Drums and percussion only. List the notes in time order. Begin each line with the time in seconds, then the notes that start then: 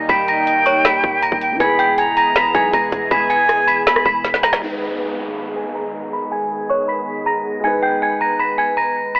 0.09 kick, closed hi-hat
0.28 closed hi-hat
0.47 closed hi-hat
0.66 closed hi-hat
0.85 snare, closed hi-hat
1.04 kick
1.23 closed hi-hat
1.32 kick
1.41 closed hi-hat
1.60 kick, closed hi-hat
1.79 closed hi-hat
1.98 closed hi-hat
2.17 closed hi-hat
2.36 snare, closed hi-hat
2.55 kick, closed hi-hat
2.73 kick, closed hi-hat
2.92 kick, closed hi-hat
3.11 kick, closed hi-hat
3.30 closed hi-hat
3.49 cross-stick, closed hi-hat
3.68 closed hi-hat
3.87 snare, closed hi-hat
3.96 cross-stick
4.06 kick
4.25 snare, closed hi-hat
4.34 snare
4.43 snare, closed hi-hat
4.53 snare